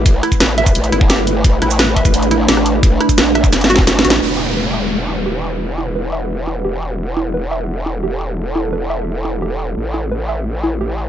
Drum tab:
CC |------------------------------------------------|------------------------------------------------|------------------------------------------------|x-----------------------------------------------|
HH |x-----x-----x-----x-----x--x--x-----x-----x-----|x-----x-----x-----x-----x--x--x-----x-----x-----|x-----x-----x-----x-----x--x--x-----x-----x--x--|------------------------------------------------|
SH |x--------x--x--------x--x--x--------x-----x-----|x--------x--x--------x--x--x--------x-----x-----|x--------x--x--------x--x--x--x-----x-----x-----|------------------------------------------------|
SD |------r-----o-----------------------o-----------|------r-----o-----------------------o--r--------|------r-----o-----r-----o---o---o---o---o---o---|------------------------------------------------|
BD |o--------o-----------o-----------o--------------|o-----------------o--o--------------------------|o--------o-----------o-----------o--------------|------------------------------------------------|

CC |------------------------------------------------|------------------------------------------------|------------------------------------------------|------------------------------------------------|
HH |------------------------------------------------|------------------------------------------------|------------------------------------------------|------------------------------------------------|
SH |------------------------------------------------|------------------------------------------------|------------------------------------------------|------------------------------------------------|
SD |------------------------------------------------|------------------------------------------------|------------------------------------------------|------------------------------------------------|
BD |------------------------------------------------|------------------------------------------------|------------------------------------------------|------------------------------------------------|